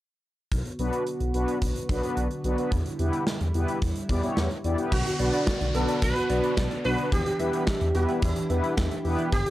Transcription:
0.52 B1 D3 B3 F#4, kick, closed hi-hat
0.66 closed hi-hat
0.79 B1 B3 D4 F#4 B4, closed hi-hat
0.93 closed hi-hat
1.07 closed hi-hat
1.20 B1, closed hi-hat
1.34 B1 B3 D4 F#4 B4, closed hi-hat
1.48 closed hi-hat
1.62 B1, kick, closed hi-hat
1.75 closed hi-hat
1.89 B1 B3 D4 F#4 B4, kick, closed hi-hat
2.03 B3 D4 F#4 B4, closed hi-hat
2.17 B1, closed hi-hat
2.31 closed hi-hat
2.44 B1 B3 D4 F#4 B4, closed hi-hat
2.58 B3 D4 F#4 B4, closed hi-hat
2.72 E2 G3 E4, kick, closed hi-hat
2.86 closed hi-hat
2.99 E2 B3 E4 G4 B4, closed hi-hat
3.13 closed hi-hat
3.27 snare
3.41 E2, closed hi-hat
3.54 E2 B3 E4 G4 B4, closed hi-hat
3.68 closed hi-hat
3.82 E2, kick, closed hi-hat
3.96 closed hi-hat
4.09 E2 B3 E4 G4 D5, kick, closed hi-hat
4.23 B3 E4 G4 C#5, closed hi-hat
4.37 E2, snare
4.51 closed hi-hat
4.64 E2 B3 E4 G4 D5, closed hi-hat
4.78 B3 E4 G4 B4, closed hi-hat
4.92 B1 D3 B3 F#4, kick, crash, downlifter
5.06 F#4, closed hi-hat
5.19 B1 B3 D4 F#4 B4 D5, closed hi-hat
5.33 D5, closed hi-hat
5.47 D5, kick, snare
5.61 B1 D5, closed hi-hat
5.75 B1 B3 D4 F#4 A4 B4, closed hi-hat
5.88 D5, closed hi-hat
6.02 B1 D3 B4, kick, closed hi-hat
6.16 F#4, closed hi-hat
6.30 B1 B3 D4 F#4 B4 D5, closed hi-hat
6.43 D5, closed hi-hat
6.57 B1 D5, kick, snare
6.64 A4
6.71 D5, closed hi-hat
6.85 B1 B3 D4 F#4 B4, open hi-hat
6.98 D3, closed hi-hat
7.12 E2 E3 D4 G4, kick, closed hi-hat
7.26 G4, closed hi-hat
7.40 E2 B3 E4 G4 B4 E5, closed hi-hat
7.53 E5, closed hi-hat
7.67 E5, kick, snare
7.81 E2 E5, closed hi-hat
7.95 E2 B3 E4 F#4 G4 B4, closed hi-hat
8.09 E5, closed hi-hat
8.22 E2 E3 E4, kick, closed hi-hat
8.36 G4, closed hi-hat
8.50 E2 B3 E4 G4 B4 E5, closed hi-hat
8.64 E5, closed hi-hat
8.77 E2 E5, kick, snare
8.91 E5, closed hi-hat
9.05 E2 B3 E4 G4 B4, open hi-hat
9.19 E3, closed hi-hat
9.32 G1 D3 B3 G4, kick, closed hi-hat
9.46 G4, closed hi-hat

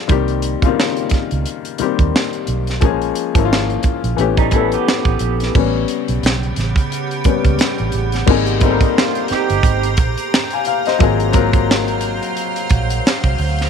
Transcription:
Already playing: F3 G3 B3 D4 F4 G4 G#4 A4
0.08 C2 D#3 G3 A#3 C4 G4, kick, closed hi-hat
0.28 closed hi-hat
0.42 closed hi-hat
0.62 C#3 G3 A#3 C4 F4, kick, closed hi-hat
0.68 D#3
0.80 snare
0.97 closed hi-hat
1.10 muted fingered electric bass stroke, kick, snare, closed hi-hat
1.31 C#2, closed hi-hat
1.46 closed hi-hat
1.65 closed hi-hat
1.78 D#3 G3 A#3 C4, muted fingered electric bass stroke, closed hi-hat
1.82 G4
1.99 D#2, kick, closed hi-hat
2.16 snare
2.33 closed hi-hat
2.47 B1, closed hi-hat
2.67 snare, closed hi-hat
2.81 A#1 F3 G#3 A#3 C#4 G#4, kick, closed hi-hat
3.02 closed hi-hat
3.15 closed hi-hat
3.34 G#1 F3 G#3 A#3 C#4, kick, closed hi-hat
3.38 E4
3.45 F4
3.53 snare
3.70 closed hi-hat
3.83 muted fingered electric bass stroke, kick, closed hi-hat
4.04 A#1, closed hi-hat
4.17 A1 E3 A3 B3 C#4, closed hi-hat
4.21 G4
4.37 G3 D#4, kick, closed hi-hat
4.51 E3 G3 A3 B3 C#4 E4 A4, kick, closed hi-hat
4.72 B3 G4, closed hi-hat
4.88 snare
5.05 A1, kick, closed hi-hat
5.19 A#1, closed hi-hat
5.40 snare, closed hi-hat
5.55 A1 C#3 G3 B3 C#4 G4, kick, crash
5.88 closed hi-hat
6.08 B1, closed hi-hat
6.23 B1, snare, closed hi-hat
6.43 closed hi-hat
6.56 A1, snare, closed hi-hat
6.76 kick, closed hi-hat
6.92 closed hi-hat
7.11 closed hi-hat
7.24 G3 B3 C#4, muted fingered electric bass stroke, kick, closed hi-hat
7.45 C#2, kick, closed hi-hat
7.59 snare, closed hi-hat
7.78 A1, closed hi-hat
7.92 A1, closed hi-hat
8.12 snare, closed hi-hat
8.27 G#1 G3 A#3 C4 D#4 G4 C5 A#5, kick, crash
8.31 G#4
8.46 closed hi-hat
8.61 G3 A#3 C4 D#4, kick, closed hi-hat
8.65 A4
8.71 A#4
8.81 kick, closed hi-hat
8.96 A#3 C#4 F4, snare
9.15 closed hi-hat
9.28 C4 D#4 G4, muted fingered electric bass stroke, snare, closed hi-hat
9.50 G1, closed hi-hat
9.63 G#1, kick, closed hi-hat
9.83 closed hi-hat
9.97 A#1, kick, closed hi-hat
10.18 closed hi-hat
10.34 snare
10.50 F5 G#5, closed hi-hat
10.65 F5, closed hi-hat
10.86 C5 D#5, snare, closed hi-hat
10.99 G#1 F#3 A#3 C4 F4 C5 F5, kick, closed hi-hat
11.03 G#4
11.20 closed hi-hat
11.33 F#3 A#3 C4 F4 A#4, kick, closed hi-hat
11.53 kick, closed hi-hat
11.71 snare
11.88 closed hi-hat
12.01 closed hi-hat
12.22 closed hi-hat
12.37 closed hi-hat
12.56 closed hi-hat
12.70 A#1, kick, closed hi-hat
12.90 closed hi-hat
13.07 snare
13.24 C2, kick, closed hi-hat
13.38 D2, open hi-hat
13.59 snare, closed hi-hat

